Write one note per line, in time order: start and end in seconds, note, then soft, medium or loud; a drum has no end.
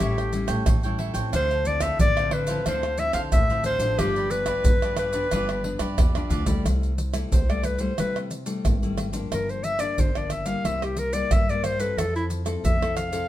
0.00 0.43 A1 medium
0.00 0.64 A2 medium
0.00 0.27 G3 medium
0.00 0.27 C#4 medium
0.00 0.27 E4 medium
0.00 0.16 E4 medium
0.00 1.00 G4 medium
0.00 0.16 A4 medium
0.00 0.17 C#5 medium
0.00 0.16 G5 medium
0.00 pandeiro medium
0.00 tamborim medium
0.00 maracas medium
0.00 surdo medium
0.18 0.32 A4 soft
0.18 0.32 C#5 soft
0.18 0.32 G5 soft
0.18 pandeiro soft
0.18 tamborim medium
0.18 maracas soft
0.33 0.64 G3 medium
0.33 0.65 C#4 medium
0.33 0.65 E4 medium
0.33 muted cavaquinho stroke soft
0.33 pandeiro medium
0.33 maracas medium
0.47 0.63 A2 medium
0.47 0.82 A4 medium
0.47 0.82 C#5 medium
0.47 0.81 G5 medium
0.47 pandeiro medium
0.47 tamborim medium
0.47 maracas medium
0.47 surdo soft
0.66 1.09 A1 medium
0.66 1.30 E3 medium
0.66 pandeiro medium
0.66 tamborim medium
0.66 maracas medium
0.66 surdo loud
0.83 1.12 G3 medium
0.83 1.12 C#4 medium
0.83 1.12 E4 medium
0.83 0.98 A4 soft
0.83 0.98 C#5 soft
0.83 0.99 G5 soft
0.83 pandeiro soft
0.83 maracas soft
0.98 1.15 E4 medium
0.98 1.14 A4 medium
0.98 1.14 C#5 medium
0.98 1.12 G5 medium
0.98 pandeiro medium
1.14 1.29 A1 medium
1.14 1.60 F3 medium
1.14 1.60 C4 medium
1.14 1.61 E4 medium
1.14 1.32 A4 soft
1.14 1.31 C#5 soft
1.14 1.31 G5 medium
1.14 pandeiro medium
1.14 maracas medium
1.14 surdo soft
1.33 1.90 D2 medium
1.33 1.97 D3 medium
1.33 1.48 D4 medium
1.33 1.49 A4 medium
1.33 1.49 C5 medium
1.33 1.68 C5 loud
1.33 1.49 F5 medium
1.33 pandeiro medium
1.33 tamborim medium
1.33 maracas medium
1.33 surdo medium
1.50 1.82 A4 soft
1.50 1.80 C5 soft
1.50 1.79 F5 medium
1.50 pandeiro soft
1.50 maracas soft
1.65 1.97 F3 medium
1.65 1.98 C4 medium
1.65 1.98 E4 medium
1.65 1.83 D5 medium
1.65 pandeiro medium
1.65 maracas medium
1.65 surdo soft
1.80 1.98 A4 medium
1.80 1.98 C5 medium
1.80 1.99 E5 medium
1.80 1.97 F5 medium
1.80 pandeiro medium
1.80 tamborim medium
1.80 maracas medium
1.80 surdo soft
1.99 2.63 A2 soft
1.99 2.56 D3 medium
1.99 2.34 D5 loud
1.99 muted cavaquinho stroke soft
1.99 pandeiro medium
1.99 maracas medium
1.99 surdo loud
2.17 2.45 F3 medium
2.17 2.45 C4 medium
2.17 2.46 E4 medium
2.17 2.31 A4 soft
2.17 2.32 C5 soft
2.17 2.32 F5 medium
2.17 pandeiro soft
2.17 tamborim medium
2.17 maracas soft
2.31 2.48 D4 medium
2.31 2.48 A4 medium
2.31 2.66 B4 medium
2.31 2.47 C5 medium
2.31 2.46 F5 medium
2.31 pandeiro medium
2.31 tamborim medium
2.47 2.61 F3 medium
2.47 2.61 C4 medium
2.47 2.61 E4 medium
2.47 2.65 A4 medium
2.47 2.64 C5 medium
2.47 2.64 F5 medium
2.47 pandeiro medium
2.47 maracas medium
2.47 surdo soft
2.66 3.09 D2 medium
2.66 3.30 D3 medium
2.66 2.86 F3 medium
2.66 2.86 C4 medium
2.66 2.82 D4 medium
2.66 2.86 E4 medium
2.66 2.82 A4 medium
2.66 3.00 C5 medium
2.66 2.82 C5 medium
2.66 2.83 F5 medium
2.66 pandeiro medium
2.66 tamborim medium
2.66 maracas medium
2.66 surdo medium
2.83 2.98 A4 soft
2.83 2.98 C5 soft
2.83 2.99 F5 soft
2.83 pandeiro soft
2.83 tamborim medium
2.83 maracas soft
2.98 3.44 F3 medium
2.98 3.44 C4 medium
2.98 3.44 E4 medium
2.98 3.13 E5 loud
2.98 muted cavaquinho stroke soft
2.98 pandeiro medium
2.98 maracas medium
3.13 3.29 D3 medium
3.13 3.48 A4 medium
3.13 3.47 C5 medium
3.13 3.47 F5 medium
3.13 3.22 F5 medium
3.13 pandeiro medium
3.13 tamborim medium
3.13 maracas medium
3.13 surdo soft
3.32 3.75 D2 medium
3.32 3.96 A2 medium
3.32 3.64 E5 loud
3.32 pandeiro medium
3.32 tamborim medium
3.32 maracas medium
3.32 surdo loud
3.50 3.78 F3 medium
3.50 3.78 C4 medium
3.50 3.78 E4 medium
3.50 3.65 A4 soft
3.50 3.65 C5 soft
3.50 3.65 F5 soft
3.50 pandeiro soft
3.50 maracas soft
3.64 3.81 D4 medium
3.64 3.81 A4 medium
3.64 4.00 C5 loud
3.64 3.80 C5 medium
3.64 3.79 F5 medium
3.64 pandeiro medium
3.64 maracas medium
3.79 3.95 A1 medium
3.79 4.26 F3 medium
3.79 4.26 B3 medium
3.79 4.26 D4 medium
3.79 3.98 A4 soft
3.79 3.97 C5 soft
3.79 3.97 F5 soft
3.79 pandeiro medium
3.79 maracas medium
3.79 surdo soft
3.99 4.55 G1 medium
3.99 4.63 G2 medium
3.99 4.15 F4 medium
3.99 4.32 G4 loud
3.99 4.15 G4 medium
3.99 4.15 B4 medium
3.99 4.15 D5 medium
3.99 pandeiro medium
3.99 tamborim medium
3.99 maracas medium
3.99 surdo medium
4.16 4.48 G4 soft
4.16 4.46 B4 soft
4.16 4.45 D5 medium
4.16 pandeiro soft
4.16 maracas soft
4.31 4.76 F3 medium
4.31 4.77 B3 medium
4.31 4.77 D4 medium
4.31 4.98 B4 medium
4.31 pandeiro medium
4.31 maracas medium
4.46 4.64 G4 medium
4.46 4.64 B4 medium
4.46 4.63 D5 medium
4.46 pandeiro medium
4.46 tamborim medium
4.46 maracas medium
4.46 surdo soft
4.65 5.22 G2 medium
4.65 5.29 D3 soft
4.65 muted cavaquinho stroke soft
4.65 pandeiro medium
4.65 maracas medium
4.65 surdo loud
4.82 5.11 F3 medium
4.82 5.11 B3 medium
4.82 5.11 D4 medium
4.82 4.97 G4 soft
4.82 4.97 B4 soft
4.82 4.98 D5 soft
4.82 pandeiro soft
4.82 tamborim medium
4.82 maracas soft
4.97 5.13 F4 soft
4.97 5.14 G4 medium
4.97 5.95 B4 medium
4.97 5.13 B4 medium
4.97 5.11 D5 medium
4.97 pandeiro medium
4.97 tamborim medium
4.97 maracas medium
5.13 5.26 F3 medium
5.13 5.26 B3 medium
5.13 5.26 D4 medium
5.13 5.31 G4 soft
5.13 5.30 B4 medium
5.13 5.29 D5 medium
5.13 pandeiro medium
5.13 maracas medium
5.13 surdo soft
5.31 5.74 G1 medium
5.31 5.95 G2 medium
5.31 5.60 F3 medium
5.31 5.60 B3 medium
5.31 5.60 D4 medium
5.31 5.47 F4 medium
5.31 5.48 G4 medium
5.31 5.48 B4 medium
5.31 5.48 D5 medium
5.31 pandeiro medium
5.31 tamborim medium
5.31 maracas medium
5.31 surdo medium
5.49 5.63 G4 soft
5.49 5.63 B4 soft
5.49 pandeiro soft
5.49 tamborim medium
5.49 maracas soft
5.64 5.96 F3 medium
5.64 5.96 B3 soft
5.64 5.96 D4 medium
5.64 muted cavaquinho stroke soft
5.64 pandeiro medium
5.79 5.95 G2 medium
5.79 6.13 G4 medium
5.79 6.13 B4 medium
5.79 6.13 D5 medium
5.79 pandeiro medium
5.79 tamborim medium
5.79 maracas medium
5.79 surdo soft
5.98 6.28 E2 medium
5.98 6.62 D3 medium
5.98 pandeiro medium
5.98 tamborim medium
5.98 maracas medium
5.98 surdo loud
6.15 6.44 F3 medium
6.15 6.44 B3 medium
6.15 6.44 D4 medium
6.15 6.29 G4 soft
6.15 6.30 B4 soft
6.15 6.30 D5 soft
6.15 pandeiro soft
6.15 tamborim medium
6.15 maracas soft
6.30 6.61 D2 medium
6.30 6.46 F4 medium
6.30 6.46 G4 medium
6.30 6.46 B4 medium
6.30 6.45 D5 medium
6.30 surdo medium
6.30 pandeiro medium
6.30 maracas medium
6.46 6.92 G3 medium
6.46 6.92 A3 medium
6.46 6.92 E4 medium
6.46 6.64 G4 soft
6.46 6.63 B4 soft
6.46 6.63 D5 soft
6.46 pandeiro medium
6.46 maracas medium
6.46 surdo medium
6.65 7.22 C2 medium
6.65 7.28 C3 medium
6.65 pandeiro medium
6.65 tamborim medium
6.65 maracas medium
6.65 surdo medium
6.83 pandeiro soft
6.83 maracas soft
6.98 pandeiro medium
6.98 maracas medium
7.13 7.42 G3 medium
7.13 7.42 A3 medium
7.13 7.43 E4 medium
7.13 pandeiro medium
7.13 tamborim medium
7.13 maracas medium
7.32 7.88 C2 medium
7.32 7.95 G2 medium
7.32 7.51 C5 medium
7.32 pandeiro medium
7.32 maracas medium
7.32 surdo loud
7.49 7.77 G3 medium
7.49 7.77 A3 medium
7.49 7.77 E4 medium
7.49 7.66 D5 medium
7.49 pandeiro soft
7.49 tamborim medium
7.49 maracas soft
7.64 7.82 B4 medium
7.64 pandeiro medium
7.64 tamborim medium
7.64 maracas medium
7.79 7.92 G3 medium
7.79 7.92 A3 medium
7.79 7.92 E4 medium
7.79 7.98 C5 medium
7.79 pandeiro medium
7.79 maracas medium
7.98 8.62 C3 medium
7.98 8.55 C3 medium
7.98 8.30 G3 medium
7.98 8.30 A3 medium
7.98 8.30 E4 medium
7.98 8.19 B4 medium
7.98 pandeiro medium
7.98 tamborim medium
7.98 maracas medium
7.98 surdo medium
8.16 pandeiro soft
8.16 tamborim medium
8.16 maracas soft
8.31 pandeiro medium
8.31 maracas medium
8.46 8.75 G3 medium
8.46 8.75 A3 medium
8.46 8.75 E4 medium
8.46 pandeiro medium
8.46 maracas medium
8.65 9.22 G#1 medium
8.65 9.28 G2 medium
8.65 pandeiro medium
8.65 tamborim medium
8.65 maracas medium
8.65 surdo loud
8.82 9.10 G3 medium
8.82 9.10 A3 medium
8.82 9.10 E4 medium
8.82 pandeiro soft
8.82 maracas soft
8.98 pandeiro medium
8.98 tamborim medium
8.98 maracas medium
9.12 9.75 F3 soft
9.12 9.75 A#3 medium
9.12 9.75 D4 medium
9.12 pandeiro medium
9.12 maracas medium
9.31 9.88 G1 medium
9.31 9.95 G2 medium
9.31 9.51 A#4 medium
9.31 pandeiro medium
9.31 tamborim medium
9.31 maracas medium
9.31 surdo medium
9.49 9.65 C5 medium
9.49 pandeiro soft
9.49 maracas soft
9.64 9.81 E5 medium
9.64 pandeiro medium
9.64 maracas medium
9.79 10.09 F3 soft
9.79 10.09 A#3 medium
9.79 10.09 D4 medium
9.79 10.01 D5 medium
9.79 pandeiro medium
9.79 tamborim medium
9.79 maracas medium
9.98 10.55 G1 medium
9.98 10.61 D3 medium
9.98 10.18 C5 medium
9.98 pandeiro medium
9.98 maracas medium
9.98 surdo loud
10.15 10.43 F3 medium
10.15 10.44 A#3 medium
10.15 10.44 D4 medium
10.15 10.33 D5 medium
10.15 pandeiro soft
10.15 tamborim medium
10.15 maracas soft
10.30 10.47 E5 medium
10.30 pandeiro medium
10.30 tamborim medium
10.30 maracas medium
10.46 11.08 G3 medium
10.46 11.08 A#3 medium
10.46 11.09 E4 medium
10.46 10.67 F5 medium
10.46 pandeiro medium
10.46 maracas medium
10.64 11.21 C2 medium
10.64 11.28 C3 medium
10.64 10.85 E5 medium
10.64 pandeiro medium
10.64 tamborim medium
10.64 maracas medium
10.64 surdo medium
10.82 11.00 G4 medium
10.82 pandeiro soft
10.82 tamborim medium
10.82 maracas soft
10.97 11.15 A#4 medium
10.97 pandeiro medium
10.97 maracas medium
11.13 11.42 G3 medium
11.13 11.42 A#3 medium
11.13 11.42 E4 medium
11.13 11.33 D5 medium
11.13 pandeiro medium
11.13 maracas medium
11.31 11.88 G2 medium
11.31 11.95 G2 medium
11.31 11.51 E5 medium
11.31 pandeiro medium
11.31 tamborim medium
11.31 maracas medium
11.31 surdo loud
11.49 11.77 G3 soft
11.49 11.77 A#3 medium
11.49 11.77 E4 medium
11.49 11.65 D5 medium
11.49 pandeiro soft
11.49 maracas soft
11.64 11.81 C5 medium
11.64 pandeiro medium
11.64 tamborim medium
11.64 maracas medium
11.80 12.42 C4 medium
11.80 12.42 E4 medium
11.80 12.42 A4 medium
11.80 12.00 B4 medium
11.80 pandeiro medium
11.80 maracas medium
11.97 12.54 F2 medium
11.97 12.61 F3 medium
11.97 12.15 A4 medium
11.97 pandeiro medium
11.97 tamborim medium
11.97 maracas medium
11.97 surdo medium
12.16 12.25 E4 medium
12.16 pandeiro soft
12.16 maracas soft
12.30 pandeiro medium
12.30 maracas medium
12.45 12.74 C4 medium
12.45 12.75 E4 medium
12.45 12.75 A4 medium
12.45 pandeiro medium
12.45 tamborim medium
12.45 maracas medium
12.64 13.21 F2 medium
12.64 13.28 C3 medium
12.64 12.96 E5 medium
12.64 pandeiro medium
12.64 maracas medium
12.64 surdo loud
12.82 13.10 C4 medium
12.82 13.10 E4 medium
12.82 13.10 A4 medium
12.82 pandeiro soft
12.82 tamborim medium
12.82 maracas soft
12.96 13.28 F5 medium
12.96 pandeiro medium
12.96 tamborim medium
12.96 maracas medium
13.12 13.25 C4 medium
13.12 13.25 E4 medium
13.12 13.25 A4 medium
13.12 pandeiro medium
13.12 maracas medium